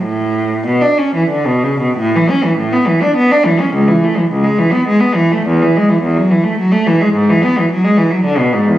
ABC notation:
X:1
M:3/4
L:1/16
Q:1/4=105
K:A
V:1 name="Cello" clef=bass
A,,4 B,, D C E, D, B,, C, B,, | A,, E, C E, A,, B, E, D B, D E, C | C,, E, A, E, C,, G, E, B, G, B, E, A, | E,, E, G, E, E,, F, E, A, F, A, E, G, |
G,, E, B, E, F, G, E, F, D, B,, G,, E,, |]